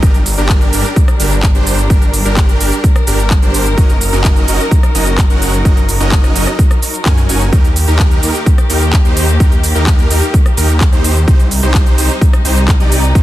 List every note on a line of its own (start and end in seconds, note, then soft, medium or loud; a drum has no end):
0.00 0.35 G1 loud
0.00 3.74 G3 medium
0.00 0.16 D4 medium
0.00 3.74 D4 medium
0.00 0.16 G4 medium
0.00 0.16 A#4 medium
0.00 7.49 A#4 medium
0.00 kick loud
0.00 closed hi-hat medium
0.00 shaker soft
0.14 closed hi-hat soft
0.14 shaker soft
0.26 open hi-hat loud
0.26 shaker medium
0.38 0.71 G1 loud
0.38 0.70 D4 medium
0.38 0.70 G4 medium
0.38 0.70 A#4 medium
0.38 closed hi-hat soft
0.38 shaker soft
0.49 kick loud
0.49 clap loud
0.49 closed hi-hat medium
0.49 shaker soft
0.61 closed hi-hat soft
0.61 shaker soft
0.73 0.84 G1 loud
0.73 0.86 D4 medium
0.73 0.86 G4 medium
0.73 0.86 A#4 loud
0.73 open hi-hat loud
0.73 shaker medium
0.85 closed hi-hat soft
0.85 shaker soft
0.96 kick loud
0.96 closed hi-hat medium
0.96 shaker soft
1.08 cross-stick medium
1.08 closed hi-hat soft
1.08 shaker soft
1.20 1.53 G1 loud
1.20 1.33 D4 medium
1.20 1.33 G4 medium
1.20 1.33 A#4 medium
1.20 open hi-hat loud
1.20 shaker medium
1.31 closed hi-hat soft
1.31 shaker soft
1.43 kick loud
1.43 clap loud
1.43 closed hi-hat medium
1.43 shaker soft
1.55 1.88 G1 loud
1.55 1.76 D4 medium
1.55 1.76 G4 medium
1.55 1.76 C5 loud
1.55 closed hi-hat soft
1.55 shaker soft
1.67 open hi-hat loud
1.67 shaker medium
1.78 closed hi-hat soft
1.78 shaker soft
1.90 2.23 G1 loud
1.90 2.03 D4 medium
1.90 2.03 G4 medium
1.90 2.03 A#4 medium
1.90 kick loud
1.90 closed hi-hat medium
1.90 shaker soft
2.02 closed hi-hat soft
2.02 shaker soft
2.14 open hi-hat loud
2.14 shaker medium
2.25 2.58 G1 loud
2.25 2.58 D4 medium
2.25 2.58 G4 medium
2.25 2.58 A#4 medium
2.25 closed hi-hat soft
2.25 shaker soft
2.37 kick loud
2.37 clap loud
2.37 closed hi-hat medium
2.37 shaker soft
2.49 closed hi-hat soft
2.49 shaker soft
2.60 2.71 G1 loud
2.60 2.73 D4 medium
2.60 2.73 G4 medium
2.60 2.73 A#4 loud
2.60 open hi-hat loud
2.60 shaker medium
2.72 closed hi-hat soft
2.72 shaker soft
2.84 kick loud
2.84 closed hi-hat medium
2.84 shaker soft
2.96 cross-stick medium
2.96 closed hi-hat soft
2.96 shaker soft
3.07 3.40 G1 loud
3.07 3.20 D4 medium
3.07 3.20 G4 medium
3.07 3.20 A#4 medium
3.07 open hi-hat loud
3.07 shaker medium
3.19 closed hi-hat soft
3.19 shaker soft
3.30 kick loud
3.30 clap loud
3.30 closed hi-hat medium
3.30 shaker soft
3.42 3.75 G1 loud
3.42 3.63 D4 medium
3.42 3.63 G4 medium
3.42 3.63 C5 loud
3.42 closed hi-hat soft
3.42 shaker soft
3.54 open hi-hat loud
3.54 shaker medium
3.66 closed hi-hat soft
3.66 shaker soft
3.78 4.10 F#1 loud
3.78 7.49 F#3 medium
3.78 3.91 C#4 medium
3.78 3.91 D#4 medium
3.78 7.49 D#4 medium
3.78 3.91 F#4 medium
3.78 3.91 A#4 medium
3.78 3.91 D#5 medium
3.78 kick loud
3.78 closed hi-hat medium
3.78 shaker soft
3.89 closed hi-hat soft
3.89 shaker soft
4.01 open hi-hat loud
4.01 shaker medium
4.13 4.46 F#1 loud
4.13 4.45 C#4 medium
4.13 4.45 D#4 medium
4.13 4.45 F#4 medium
4.13 4.45 A#4 medium
4.13 4.45 D#5 medium
4.13 closed hi-hat soft
4.13 shaker soft
4.24 kick loud
4.24 clap loud
4.24 closed hi-hat medium
4.24 shaker soft
4.36 closed hi-hat soft
4.36 shaker soft
4.48 4.59 F#1 loud
4.48 4.61 C#4 medium
4.48 4.61 D#4 medium
4.48 4.61 F#4 medium
4.48 4.61 A#4 medium
4.48 4.61 D#5 loud
4.48 open hi-hat loud
4.48 shaker medium
4.60 closed hi-hat soft
4.60 shaker soft
4.71 kick loud
4.71 closed hi-hat medium
4.71 shaker soft
4.83 cross-stick medium
4.83 closed hi-hat soft
4.83 shaker soft
4.95 5.28 F#1 loud
4.95 5.08 C#4 medium
4.95 5.08 D#4 medium
4.95 5.08 F#4 medium
4.95 5.08 A#4 medium
4.95 5.08 D#5 medium
4.95 open hi-hat loud
4.95 shaker medium
5.07 closed hi-hat soft
5.07 shaker soft
5.18 kick loud
5.18 clap loud
5.18 closed hi-hat medium
5.18 shaker soft
5.30 5.63 F#1 loud
5.30 5.51 C#4 medium
5.30 5.51 D#4 medium
5.30 5.51 F#4 medium
5.30 5.51 A#4 medium
5.30 5.51 F#5 loud
5.30 closed hi-hat soft
5.30 shaker soft
5.42 open hi-hat loud
5.42 shaker medium
5.54 closed hi-hat soft
5.54 shaker soft
5.65 5.98 F#1 loud
5.65 5.78 C#4 medium
5.65 5.78 D#4 medium
5.65 5.78 F#4 medium
5.65 5.78 A#4 medium
5.65 5.78 D#5 medium
5.65 kick loud
5.65 closed hi-hat medium
5.65 shaker soft
5.77 closed hi-hat soft
5.77 shaker soft
5.89 open hi-hat loud
5.89 shaker medium
6.00 6.33 F#1 loud
6.00 6.33 C#4 medium
6.00 6.33 D#4 medium
6.00 6.33 F#4 medium
6.00 6.33 A#4 medium
6.00 6.33 D#5 medium
6.00 closed hi-hat soft
6.00 shaker soft
6.12 kick loud
6.12 clap loud
6.12 closed hi-hat medium
6.12 shaker soft
6.24 cross-stick medium
6.24 closed hi-hat soft
6.24 shaker soft
6.35 6.46 F#1 loud
6.35 6.48 C#4 medium
6.35 6.48 D#4 medium
6.35 6.48 F#4 medium
6.35 6.48 A#4 medium
6.35 6.48 D#5 loud
6.35 open hi-hat loud
6.35 shaker medium
6.47 cross-stick medium
6.47 closed hi-hat soft
6.47 shaker soft
6.59 kick loud
6.59 closed hi-hat medium
6.59 shaker soft
6.71 cross-stick medium
6.71 closed hi-hat soft
6.71 shaker soft
6.82 open hi-hat loud
6.82 shaker medium
6.94 closed hi-hat soft
6.94 shaker soft
7.06 7.27 F#2 loud
7.06 7.19 C#4 loud
7.06 7.19 D#4 medium
7.06 7.19 F#4 medium
7.06 7.19 A#4 medium
7.06 7.19 G#5 loud
7.06 kick loud
7.06 clap loud
7.06 closed hi-hat medium
7.06 shaker soft
7.17 closed hi-hat soft
7.17 shaker soft
7.29 7.50 F#1 loud
7.29 7.42 C#4 medium
7.29 7.42 D#4 medium
7.29 7.42 F#4 medium
7.29 7.42 A#4 medium
7.29 7.42 G#5 loud
7.29 open hi-hat loud
7.29 shaker medium
7.41 shaker soft
7.53 7.85 D#2 loud
7.53 11.24 D#3 medium
7.53 11.24 A#3 medium
7.53 7.66 D#4 medium
7.53 7.66 G4 medium
7.53 11.24 G4 medium
7.53 7.66 A#4 medium
7.53 kick loud
7.53 closed hi-hat medium
7.53 shaker soft
7.64 closed hi-hat soft
7.64 shaker soft
7.76 open hi-hat loud
7.76 shaker medium
7.88 8.21 D#2 medium
7.88 8.20 D#4 medium
7.88 8.20 G4 medium
7.88 8.20 A#4 medium
7.88 closed hi-hat soft
7.88 shaker soft
7.99 kick loud
7.99 clap loud
7.99 closed hi-hat medium
7.99 shaker soft
8.11 closed hi-hat soft
8.11 shaker soft
8.23 8.34 D#2 loud
8.23 8.36 D#4 medium
8.23 8.36 G4 medium
8.23 8.36 A#4 loud
8.23 open hi-hat loud
8.23 shaker medium
8.35 closed hi-hat soft
8.35 shaker soft
8.46 kick loud
8.46 closed hi-hat medium
8.46 shaker soft
8.58 cross-stick medium
8.58 closed hi-hat soft
8.58 shaker soft
8.70 9.03 D#2 loud
8.70 8.83 D#4 medium
8.70 8.83 G4 medium
8.70 8.83 A#4 medium
8.70 open hi-hat loud
8.70 shaker medium
8.82 closed hi-hat soft
8.82 shaker soft
8.93 kick loud
8.93 clap loud
8.93 closed hi-hat medium
8.93 shaker soft
9.05 9.38 D#2 loud
9.05 9.26 D#4 medium
9.05 9.26 G4 medium
9.05 9.26 C5 medium
9.05 closed hi-hat soft
9.05 shaker soft
9.17 open hi-hat loud
9.17 shaker medium
9.28 closed hi-hat soft
9.28 shaker soft
9.40 9.73 D#2 loud
9.40 9.53 D#4 medium
9.40 9.53 G4 medium
9.40 9.53 A#4 medium
9.40 kick loud
9.40 closed hi-hat medium
9.40 shaker soft
9.52 closed hi-hat soft
9.52 shaker soft
9.64 open hi-hat loud
9.64 shaker medium
9.75 10.08 D#2 loud
9.75 10.08 D#4 medium
9.75 10.08 G4 medium
9.75 10.08 A#4 medium
9.75 closed hi-hat soft
9.75 shaker soft
9.87 kick loud
9.87 clap loud
9.87 closed hi-hat medium
9.87 shaker soft
9.99 closed hi-hat soft
9.99 shaker soft
10.10 10.21 D#2 loud
10.10 10.23 D#4 medium
10.10 10.23 G4 medium
10.10 10.23 A#4 loud
10.10 open hi-hat loud
10.10 shaker medium
10.22 closed hi-hat soft
10.22 shaker soft
10.34 kick loud
10.34 closed hi-hat medium
10.34 shaker soft
10.46 cross-stick medium
10.46 closed hi-hat soft
10.46 shaker soft
10.57 10.90 D#2 loud
10.57 10.70 D#4 medium
10.57 10.70 G4 medium
10.57 10.70 A#4 medium
10.57 open hi-hat loud
10.57 shaker medium
10.69 closed hi-hat soft
10.69 shaker soft
10.81 kick loud
10.81 clap loud
10.81 closed hi-hat medium
10.81 shaker soft
10.92 11.25 D#2 loud
10.92 11.13 D#4 medium
10.92 11.13 G4 medium
10.92 11.13 C5 loud
10.92 closed hi-hat soft
10.92 shaker soft
11.04 open hi-hat loud
11.04 shaker medium
11.16 closed hi-hat soft
11.16 shaker soft
11.28 11.61 C2 loud
11.28 13.23 C3 medium
11.28 13.23 G3 medium
11.28 11.41 D#4 medium
11.28 13.23 D#4 medium
11.28 11.41 G4 medium
11.28 11.41 C5 medium
11.28 kick loud
11.28 closed hi-hat medium
11.28 shaker soft
11.40 closed hi-hat soft
11.40 shaker soft
11.51 open hi-hat loud
11.51 shaker medium
11.63 11.96 C2 loud
11.63 11.95 D#4 medium
11.63 11.95 G4 medium
11.63 11.95 C5 loud
11.63 closed hi-hat soft
11.63 shaker soft
11.74 kick loud
11.74 clap loud
11.74 closed hi-hat medium
11.74 shaker soft
11.86 closed hi-hat soft
11.86 shaker soft
11.98 12.09 C2 loud
11.98 12.11 D#4 medium
11.98 12.11 G4 medium
11.98 12.11 C5 loud
11.98 open hi-hat loud
11.98 shaker medium
12.10 closed hi-hat soft
12.10 shaker soft
12.21 kick loud
12.21 closed hi-hat medium
12.21 shaker soft
12.33 cross-stick medium
12.33 closed hi-hat soft
12.33 shaker soft
12.45 12.78 C2 loud
12.45 12.58 D#4 medium
12.45 12.58 G4 medium
12.45 12.58 C5 medium
12.45 open hi-hat loud
12.45 shaker medium
12.57 closed hi-hat soft
12.57 shaker soft
12.68 kick loud
12.68 clap loud
12.68 closed hi-hat medium
12.68 shaker soft
12.80 13.13 C2 loud
12.80 13.01 D#4 medium
12.80 13.01 G4 medium
12.80 13.01 D5 medium
12.80 closed hi-hat soft
12.80 shaker soft
12.92 open hi-hat loud
12.92 shaker medium
13.04 shaker soft
13.15 13.23 C2 loud
13.15 13.23 D#4 medium
13.15 13.23 G4 medium
13.15 13.23 C5 medium
13.15 kick loud
13.15 closed hi-hat medium
13.15 shaker soft